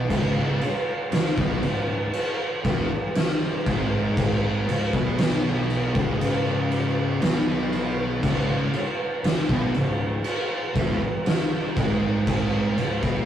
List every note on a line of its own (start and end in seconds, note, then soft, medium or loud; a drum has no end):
0.00 0.10 B3 loud
0.10 0.58 C#1 loud
0.10 0.59 C#2 loud
0.10 0.60 C#3 loud
0.10 kick loud
0.10 crash medium
0.60 muted distorted electric guitar stroke medium
0.60 muted picked electric bass stroke soft
0.60 crash medium
0.65 muted distorted electric guitar stroke medium
1.11 muted distorted electric guitar stroke medium
1.11 muted picked electric bass stroke soft
1.11 snare loud
1.11 crash medium
1.36 1.61 B1 loud
1.36 1.61 B2 medium
1.36 1.61 B3 loud
1.36 kick loud
1.41 1.63 B3 loud
1.62 2.10 C#1 medium
1.62 2.03 C#2 medium
1.62 crash medium
2.14 crash medium
2.64 2.88 E1 loud
2.64 2.88 E2 loud
2.64 2.89 E3 loud
2.64 kick loud
2.64 crash medium
3.15 snare loud
3.15 crash medium
3.66 4.64 G#1 loud
3.66 4.66 G#2 medium
3.66 4.67 G#3 medium
3.66 kick loud
3.66 crash medium
4.17 kick loud
4.17 crash medium
4.68 4.92 C#1 medium
4.68 4.92 C#2 medium
4.68 crash medium
4.93 5.91 B1 medium
4.93 5.93 B2 medium
4.93 5.93 B3 loud
4.93 kick loud
5.18 snare loud
5.18 crash medium
5.70 crash medium
5.95 7.18 C#1 loud
5.95 7.20 C#2 medium
5.95 7.20 C#3 loud
5.95 kick loud
6.21 crash medium
6.72 crash medium
7.20 8.19 B1 loud
7.20 8.21 B2 loud
7.20 8.21 B3 loud
7.20 snare loud
7.20 crash medium
7.73 crash medium
8.22 8.70 C#1 medium
8.22 8.71 C#2 loud
8.22 8.72 C#3 loud
8.22 kick loud
8.22 crash medium
8.72 muted picked electric bass stroke soft
8.72 muted distorted electric guitar stroke medium
8.72 crash medium
9.23 muted picked electric bass stroke soft
9.23 muted distorted electric guitar stroke medium
9.23 snare loud
9.23 crash medium
9.48 9.73 B1 medium
9.48 9.73 B2 medium
9.48 9.73 B3 loud
9.48 kick loud
9.74 10.21 C#1 medium
9.74 10.15 C#2 medium
9.74 crash medium
10.24 crash medium
10.74 10.99 E1 loud
10.74 10.99 E2 medium
10.74 10.99 E3 loud
10.74 kick loud
10.74 crash medium
11.26 snare loud
11.26 crash medium
11.75 12.74 G#1 loud
11.75 12.76 G#2 medium
11.75 12.76 G#3 loud
11.75 kick loud
11.75 crash medium
12.27 kick loud
12.27 crash medium
12.76 13.01 C#1 medium
12.76 13.01 C#2 medium
12.76 crash medium
13.01 13.25 B1 medium
13.01 13.25 B2 loud
13.01 13.25 B3 medium
13.01 kick loud